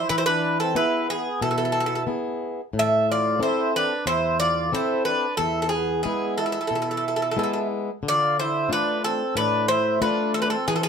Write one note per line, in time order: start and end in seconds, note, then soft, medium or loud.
0.09 0.74 E3 medium
0.09 0.16 E4 medium
0.09 0.16 B4 medium
0.18 0.24 E4 medium
0.18 0.24 C5 medium
0.25 0.58 D4 medium
0.25 0.58 B4 medium
0.60 0.75 C4 medium
0.60 0.76 A4 medium
0.75 1.28 B3 soft
0.75 1.28 E4 soft
0.75 1.07 E4 medium
0.75 1.28 G#4 soft
0.75 1.07 B4 medium
1.10 1.41 B3 medium
1.10 1.42 G#4 medium
1.41 2.06 B2 medium
1.41 2.04 E4 medium
1.41 1.49 A4 medium
1.51 1.56 A4 medium
1.58 1.64 A4 medium
1.65 1.71 A4 soft
1.72 1.79 A4 medium
1.80 1.85 A4 medium
1.86 1.93 A4 medium
1.95 2.02 A4 soft
2.07 2.60 B3 soft
2.07 2.60 E4 soft
2.07 2.61 G#4 medium
2.73 3.38 A2 medium
2.78 3.07 A4 medium
2.78 3.10 E5 loud
3.10 3.39 F4 medium
3.10 3.40 D5 medium
3.39 3.92 C4 soft
3.39 3.93 E4 soft
3.39 3.93 A4 soft
3.39 3.75 C5 medium
3.44 3.73 E4 medium
3.76 4.06 D4 medium
3.76 4.05 B4 medium
4.06 4.70 E2 medium
4.06 4.38 E4 medium
4.06 4.39 C5 medium
4.40 4.70 F4 medium
4.40 4.73 D5 medium
4.72 5.25 C4 soft
4.72 5.25 E4 soft
4.72 5.04 E4 medium
4.72 5.26 A4 medium
4.72 5.04 C5 medium
5.05 5.37 D4 medium
5.05 5.37 B4 medium
5.37 6.03 E2 medium
5.37 5.61 A4 medium
5.42 5.64 E4 medium
5.62 5.69 A4 medium
5.67 5.72 C4 medium
5.67 6.01 G#4 medium
5.75 6.04 B3 medium
6.03 6.58 G#3 soft
6.03 6.58 B3 soft
6.03 6.58 E4 medium
6.03 6.34 G#4 medium
6.08 6.37 B3 medium
6.38 7.67 E4 medium
6.38 6.44 A4 medium
6.46 6.51 A4 soft
6.52 6.59 A4 medium
6.61 6.66 A4 soft
6.67 7.35 B2 medium
6.67 6.74 A4 medium
6.75 6.81 A4 soft
6.82 6.89 A4 soft
6.91 6.96 A4 soft
6.97 7.04 A4 soft
7.08 7.13 A4 soft
7.16 7.21 A4 medium
7.22 7.28 A4 soft
7.31 7.36 A4 medium
7.37 7.90 G#3 medium
7.37 7.90 B3 soft
7.37 7.90 E4 medium
7.37 7.42 A4 soft
7.43 7.49 A4 medium
7.53 7.58 A4 soft
8.03 8.67 D3 medium
8.08 8.37 F4 medium
8.08 8.37 D5 loud
8.39 8.69 E4 medium
8.39 8.72 C5 medium
8.69 9.22 A3 soft
8.69 9.22 D4 soft
8.69 9.22 F4 medium
8.69 9.02 B4 medium
8.74 9.02 D4 medium
9.04 9.35 C4 medium
9.04 9.36 A4 medium
9.35 10.00 A2 medium
9.35 9.68 D4 medium
9.35 9.68 B4 medium
9.68 10.00 E4 medium
9.68 9.99 C5 loud
10.01 10.54 A3 medium
10.01 10.54 D4 soft
10.01 10.34 D4 medium
10.01 10.55 F4 medium
10.01 10.32 B4 medium
10.34 10.43 C4 medium
10.34 10.41 A4 medium
10.42 10.50 D4 medium
10.42 10.49 B4 medium
10.50 10.69 C4 medium
10.50 10.67 A4 medium
10.68 10.88 E3 medium
10.68 10.75 G#4 medium
10.73 10.77 B3 medium
10.73 10.82 A4 medium
10.79 10.84 C4 medium
10.79 10.88 G#4 medium